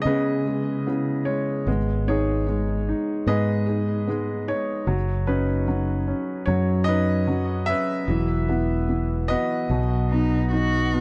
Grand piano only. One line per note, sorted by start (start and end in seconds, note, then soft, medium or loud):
0.00 0.06 C#3 medium
0.00 0.46 G#3 soft
0.00 0.42 E4 medium
0.00 0.07 G#4 medium
0.00 1.25 C#5 medium
0.00 1.29 D#5 medium
0.06 0.85 C#3 medium
0.06 1.64 G#4 medium
0.06 1.64 B4 medium
0.46 1.25 G#3 soft
0.87 1.65 C#3 medium
1.25 1.66 G#3 soft
1.25 1.64 C#5 medium
1.67 2.47 G#3 medium
2.08 2.87 D#4 medium
2.08 3.27 G#4 medium
2.08 3.31 C#5 medium
2.49 3.27 G#3 soft
2.89 3.67 D#4 soft
3.28 4.08 G#3 medium
3.28 4.84 G#4 medium
3.28 4.84 B4 medium
3.28 4.51 D#5 medium
3.69 4.46 D#4 soft
4.10 4.86 G#3 medium
4.48 4.86 D#4 soft
4.48 4.85 C#5 medium
4.87 5.66 F#3 medium
5.27 6.06 C#4 medium
5.27 6.85 D#4 medium
5.27 6.44 B4 medium
5.68 6.46 F#3 medium
6.08 6.87 C#4 medium
6.46 7.26 F#3 medium
6.46 6.88 C#5 medium
6.84 7.62 D#5 loud
6.89 7.67 C#4 soft
6.89 7.68 B4 medium
7.27 8.05 F#3 medium
7.66 8.07 C#4 soft
7.66 9.26 B4 medium
7.66 8.84 E5 loud
8.10 8.88 E3 medium
8.49 9.29 B3 medium
8.89 9.68 E3 soft
9.28 9.69 B3 soft
9.28 10.89 F#4 medium
9.28 10.89 B4 medium
9.28 10.47 D#5 medium
9.71 11.01 B2 medium
10.12 10.92 B3 soft
10.53 11.01 D#4 soft
10.94 11.01 B3 soft